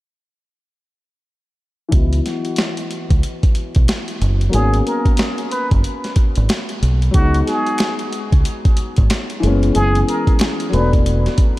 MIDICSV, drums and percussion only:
0, 0, Header, 1, 2, 480
1, 0, Start_track
1, 0, Tempo, 652174
1, 1418, Time_signature, 4, 2, 24, 8
1, 8532, End_track
2, 0, Start_track
2, 0, Title_t, "Drums"
2, 1415, Note_on_c, 9, 42, 90
2, 1418, Note_on_c, 9, 36, 117
2, 1488, Note_off_c, 9, 42, 0
2, 1491, Note_off_c, 9, 36, 0
2, 1565, Note_on_c, 9, 42, 56
2, 1639, Note_off_c, 9, 42, 0
2, 1661, Note_on_c, 9, 42, 77
2, 1664, Note_on_c, 9, 38, 35
2, 1735, Note_off_c, 9, 42, 0
2, 1737, Note_off_c, 9, 38, 0
2, 1801, Note_on_c, 9, 42, 49
2, 1874, Note_off_c, 9, 42, 0
2, 1886, Note_on_c, 9, 42, 90
2, 1902, Note_on_c, 9, 38, 107
2, 1959, Note_off_c, 9, 42, 0
2, 1975, Note_off_c, 9, 38, 0
2, 2040, Note_on_c, 9, 42, 52
2, 2114, Note_off_c, 9, 42, 0
2, 2139, Note_on_c, 9, 42, 65
2, 2213, Note_off_c, 9, 42, 0
2, 2285, Note_on_c, 9, 42, 53
2, 2286, Note_on_c, 9, 36, 83
2, 2359, Note_off_c, 9, 36, 0
2, 2359, Note_off_c, 9, 42, 0
2, 2379, Note_on_c, 9, 42, 87
2, 2453, Note_off_c, 9, 42, 0
2, 2526, Note_on_c, 9, 42, 49
2, 2527, Note_on_c, 9, 36, 95
2, 2599, Note_off_c, 9, 42, 0
2, 2600, Note_off_c, 9, 36, 0
2, 2612, Note_on_c, 9, 42, 76
2, 2686, Note_off_c, 9, 42, 0
2, 2757, Note_on_c, 9, 42, 58
2, 2768, Note_on_c, 9, 36, 88
2, 2831, Note_off_c, 9, 42, 0
2, 2842, Note_off_c, 9, 36, 0
2, 2857, Note_on_c, 9, 42, 95
2, 2863, Note_on_c, 9, 38, 119
2, 2930, Note_off_c, 9, 42, 0
2, 2936, Note_off_c, 9, 38, 0
2, 3003, Note_on_c, 9, 42, 51
2, 3076, Note_off_c, 9, 42, 0
2, 3103, Note_on_c, 9, 42, 75
2, 3177, Note_off_c, 9, 42, 0
2, 3247, Note_on_c, 9, 42, 51
2, 3320, Note_off_c, 9, 42, 0
2, 3335, Note_on_c, 9, 42, 93
2, 3408, Note_off_c, 9, 42, 0
2, 3485, Note_on_c, 9, 42, 56
2, 3559, Note_off_c, 9, 42, 0
2, 3582, Note_on_c, 9, 42, 77
2, 3656, Note_off_c, 9, 42, 0
2, 3720, Note_on_c, 9, 36, 86
2, 3721, Note_on_c, 9, 42, 50
2, 3794, Note_off_c, 9, 36, 0
2, 3795, Note_off_c, 9, 42, 0
2, 3806, Note_on_c, 9, 42, 90
2, 3822, Note_on_c, 9, 38, 109
2, 3879, Note_off_c, 9, 42, 0
2, 3896, Note_off_c, 9, 38, 0
2, 3960, Note_on_c, 9, 42, 53
2, 4034, Note_off_c, 9, 42, 0
2, 4059, Note_on_c, 9, 42, 66
2, 4132, Note_off_c, 9, 42, 0
2, 4205, Note_on_c, 9, 42, 52
2, 4206, Note_on_c, 9, 36, 85
2, 4278, Note_off_c, 9, 42, 0
2, 4279, Note_off_c, 9, 36, 0
2, 4299, Note_on_c, 9, 42, 86
2, 4373, Note_off_c, 9, 42, 0
2, 4446, Note_on_c, 9, 42, 49
2, 4450, Note_on_c, 9, 38, 35
2, 4520, Note_off_c, 9, 42, 0
2, 4524, Note_off_c, 9, 38, 0
2, 4532, Note_on_c, 9, 42, 77
2, 4535, Note_on_c, 9, 36, 93
2, 4605, Note_off_c, 9, 42, 0
2, 4609, Note_off_c, 9, 36, 0
2, 4677, Note_on_c, 9, 42, 57
2, 4751, Note_off_c, 9, 42, 0
2, 4777, Note_on_c, 9, 42, 96
2, 4783, Note_on_c, 9, 38, 111
2, 4850, Note_off_c, 9, 42, 0
2, 4856, Note_off_c, 9, 38, 0
2, 4924, Note_on_c, 9, 42, 52
2, 4997, Note_off_c, 9, 42, 0
2, 5025, Note_on_c, 9, 42, 73
2, 5098, Note_off_c, 9, 42, 0
2, 5167, Note_on_c, 9, 42, 51
2, 5241, Note_off_c, 9, 42, 0
2, 5255, Note_on_c, 9, 42, 98
2, 5258, Note_on_c, 9, 36, 125
2, 5329, Note_off_c, 9, 42, 0
2, 5332, Note_off_c, 9, 36, 0
2, 5405, Note_on_c, 9, 42, 59
2, 5479, Note_off_c, 9, 42, 0
2, 5502, Note_on_c, 9, 42, 81
2, 5504, Note_on_c, 9, 38, 37
2, 5575, Note_off_c, 9, 42, 0
2, 5578, Note_off_c, 9, 38, 0
2, 5642, Note_on_c, 9, 42, 50
2, 5715, Note_off_c, 9, 42, 0
2, 5726, Note_on_c, 9, 42, 90
2, 5731, Note_on_c, 9, 26, 80
2, 5743, Note_on_c, 9, 38, 112
2, 5800, Note_off_c, 9, 42, 0
2, 5805, Note_off_c, 9, 26, 0
2, 5816, Note_off_c, 9, 38, 0
2, 5881, Note_on_c, 9, 42, 55
2, 5954, Note_off_c, 9, 42, 0
2, 5980, Note_on_c, 9, 42, 68
2, 6054, Note_off_c, 9, 42, 0
2, 6127, Note_on_c, 9, 36, 88
2, 6127, Note_on_c, 9, 42, 56
2, 6200, Note_off_c, 9, 36, 0
2, 6201, Note_off_c, 9, 42, 0
2, 6221, Note_on_c, 9, 42, 94
2, 6294, Note_off_c, 9, 42, 0
2, 6367, Note_on_c, 9, 42, 50
2, 6368, Note_on_c, 9, 36, 101
2, 6441, Note_off_c, 9, 42, 0
2, 6442, Note_off_c, 9, 36, 0
2, 6453, Note_on_c, 9, 42, 79
2, 6527, Note_off_c, 9, 42, 0
2, 6598, Note_on_c, 9, 42, 61
2, 6609, Note_on_c, 9, 36, 91
2, 6672, Note_off_c, 9, 42, 0
2, 6682, Note_off_c, 9, 36, 0
2, 6697, Note_on_c, 9, 42, 103
2, 6700, Note_on_c, 9, 26, 73
2, 6703, Note_on_c, 9, 38, 124
2, 6771, Note_off_c, 9, 42, 0
2, 6774, Note_off_c, 9, 26, 0
2, 6777, Note_off_c, 9, 38, 0
2, 6843, Note_on_c, 9, 42, 52
2, 6917, Note_off_c, 9, 42, 0
2, 6944, Note_on_c, 9, 42, 78
2, 7017, Note_off_c, 9, 42, 0
2, 7087, Note_on_c, 9, 42, 54
2, 7161, Note_off_c, 9, 42, 0
2, 7175, Note_on_c, 9, 42, 94
2, 7249, Note_off_c, 9, 42, 0
2, 7326, Note_on_c, 9, 42, 60
2, 7399, Note_off_c, 9, 42, 0
2, 7423, Note_on_c, 9, 42, 82
2, 7496, Note_off_c, 9, 42, 0
2, 7561, Note_on_c, 9, 36, 90
2, 7562, Note_on_c, 9, 42, 51
2, 7634, Note_off_c, 9, 36, 0
2, 7636, Note_off_c, 9, 42, 0
2, 7647, Note_on_c, 9, 42, 94
2, 7651, Note_on_c, 9, 26, 77
2, 7663, Note_on_c, 9, 38, 111
2, 7720, Note_off_c, 9, 42, 0
2, 7725, Note_off_c, 9, 26, 0
2, 7737, Note_off_c, 9, 38, 0
2, 7802, Note_on_c, 9, 42, 58
2, 7875, Note_off_c, 9, 42, 0
2, 7901, Note_on_c, 9, 42, 67
2, 7974, Note_off_c, 9, 42, 0
2, 8047, Note_on_c, 9, 36, 88
2, 8047, Note_on_c, 9, 42, 57
2, 8120, Note_off_c, 9, 36, 0
2, 8120, Note_off_c, 9, 42, 0
2, 8141, Note_on_c, 9, 42, 91
2, 8215, Note_off_c, 9, 42, 0
2, 8288, Note_on_c, 9, 42, 52
2, 8292, Note_on_c, 9, 38, 37
2, 8361, Note_off_c, 9, 42, 0
2, 8366, Note_off_c, 9, 38, 0
2, 8373, Note_on_c, 9, 42, 79
2, 8376, Note_on_c, 9, 36, 102
2, 8447, Note_off_c, 9, 42, 0
2, 8450, Note_off_c, 9, 36, 0
2, 8532, End_track
0, 0, End_of_file